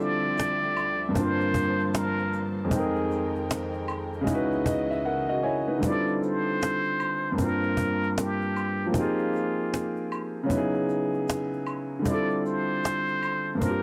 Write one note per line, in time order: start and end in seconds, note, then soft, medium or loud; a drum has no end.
0.00 1.14 D2 medium
0.00 1.09 D3 medium
0.00 2.69 D3 medium
0.00 2.68 F3 medium
0.00 1.10 G3 medium
0.00 1.12 C4 medium
0.00 1.14 C4 medium
0.00 1.13 E4 medium
0.00 1.14 F4 medium
0.00 1.14 G4 medium
0.00 1.16 A4 medium
0.00 1.17 D5 loud
0.00 1.14 E5 medium
0.00 shaker medium
0.38 cajon slap loud
0.38 shaker medium
0.62 cajon slap soft
0.77 cajon slap soft
0.77 high woodblock medium
0.77 shaker soft
1.09 2.65 G2 medium
1.09 2.66 A#3 medium
1.14 2.70 G2 medium
1.14 2.70 A#3 medium
1.14 2.68 C4 medium
1.14 2.69 D4 medium
1.14 2.70 C5 medium
1.14 1.97 C5 loud
1.14 2.70 A5 medium
1.14 cajon bass loud
1.14 shaker medium
1.20 2.70 F4 medium
1.20 2.72 A#4 medium
1.40 cajon slap soft
1.54 cajon bass loud
1.54 shaker medium
1.80 cajon slap soft
1.94 2.48 A#4 loud
1.94 cajon slap loud
1.94 shaker medium
2.19 cajon slap soft
2.33 cajon slap soft
2.33 shaker soft
2.65 4.20 F2 medium
2.65 4.22 G#3 medium
2.70 4.26 F2 medium
2.70 4.25 D#3 medium
2.70 4.26 G#3 medium
2.70 4.23 C4 medium
2.70 4.25 D#4 medium
2.70 3.46 G#4 medium
2.70 4.26 A#4 medium
2.70 4.26 G5 medium
2.70 cajon bass loud
2.70 shaker medium
2.76 4.28 A#4 medium
2.76 4.26 G5 medium
2.95 cajon slap soft
3.10 cajon slap soft
3.10 shaker medium
3.35 cajon slap soft
3.50 cajon slap loud
3.50 shaker medium
3.73 cajon slap soft
3.88 cajon slap soft
3.88 high woodblock medium
3.88 shaker soft
4.13 cajon slap soft
4.21 5.77 C#3 medium
4.21 5.78 G#3 medium
4.26 5.81 C#2 medium
4.26 5.81 C#3 medium
4.26 5.81 E3 medium
4.26 5.81 B3 medium
4.26 5.03 D#4 medium
4.26 5.04 E4 medium
4.26 5.81 F#4 medium
4.26 5.81 D#5 medium
4.26 cajon bass medium
4.26 shaker medium
4.32 5.06 F#4 medium
4.32 5.07 B4 medium
4.52 cajon slap soft
4.66 4.88 D#5 medium
4.66 cajon bass loud
4.66 shaker soft
4.90 5.04 E5 medium
4.90 cajon slap soft
5.05 5.28 A#4 medium
5.05 5.41 F#5 medium
5.29 5.43 F#4 medium
5.29 5.43 D#5 medium
5.43 5.67 E4 medium
5.43 5.66 C#5 medium
5.43 5.80 G#5 medium
5.68 6.05 D#4 soft
5.68 6.05 B4 medium
5.78 7.33 D3 medium
5.78 7.34 G3 medium
5.82 7.36 C4 medium
5.82 6.21 D5 loud
5.82 cajon bass loud
5.82 shaker medium
5.86 7.37 E4 medium
5.86 7.39 F4 medium
5.92 7.40 A4 medium
6.07 cajon slap soft
6.22 7.45 C5 loud
6.22 cajon slap soft
6.22 shaker soft
6.62 cajon slap loud
6.62 shaker medium
6.84 cajon slap soft
7.00 cajon slap soft
7.00 high woodblock medium
7.00 shaker soft
7.32 8.88 G2 medium
7.32 8.88 A#3 medium
7.38 8.90 C4 medium
7.38 8.92 D4 medium
7.38 cajon bass medium
7.38 shaker medium
7.43 8.94 F4 medium
7.43 8.23 A#4 loud
7.43 8.95 A#4 medium
7.63 cajon slap soft
7.77 cajon bass medium
7.77 shaker soft
8.03 cajon slap soft
8.18 9.00 G4 medium
8.18 cajon slap loud
8.18 shaker medium
8.41 cajon slap soft
8.56 cajon slap soft
8.56 high woodblock medium
8.56 shaker soft
8.86 10.43 F3 medium
8.86 10.44 A#3 medium
8.92 10.46 C4 medium
8.92 10.47 D#4 medium
8.92 cajon bass loud
8.92 shaker medium
8.97 10.13 F4 medium
8.97 10.49 G4 medium
8.97 10.50 G#4 medium
9.19 cajon slap soft
9.33 cajon slap soft
9.33 shaker medium
9.74 cajon slap medium
9.74 shaker medium
9.96 cajon slap soft
10.12 cajon slap soft
10.12 high woodblock medium
10.12 shaker soft
10.43 11.99 C#3 medium
10.43 12.01 F#3 medium
10.49 12.02 B3 medium
10.49 12.04 D#4 medium
10.49 cajon bass medium
10.49 shaker medium
10.55 12.05 E4 medium
10.55 12.07 G#4 medium
10.75 cajon slap soft
10.89 cajon slap soft
10.89 shaker soft
11.14 cajon slap soft
11.28 cajon slap loud
11.28 shaker medium
11.53 cajon slap soft
11.67 cajon slap soft
11.67 high woodblock medium
11.67 shaker soft
11.99 13.55 D3 medium
11.99 13.57 G3 medium
12.05 13.58 C4 medium
12.05 13.60 E4 medium
12.05 12.43 D5 loud
12.05 cajon bass loud
12.05 shaker medium
12.10 13.61 F4 medium
12.10 13.62 A4 medium
12.30 cajon slap soft
12.45 13.63 C5 loud
12.45 cajon slap soft
12.45 shaker medium
12.84 cajon slap loud
12.84 shaker medium
13.08 cajon slap soft
13.23 cajon slap soft
13.23 high woodblock medium
13.23 shaker soft
13.55 13.83 G2 medium
13.55 13.83 A#3 medium
13.61 13.83 C4 medium
13.61 13.83 D4 medium
13.61 13.83 A#4 medium
13.61 cajon bass medium
13.61 shaker medium
13.66 13.83 F4 medium
13.66 13.83 G4 medium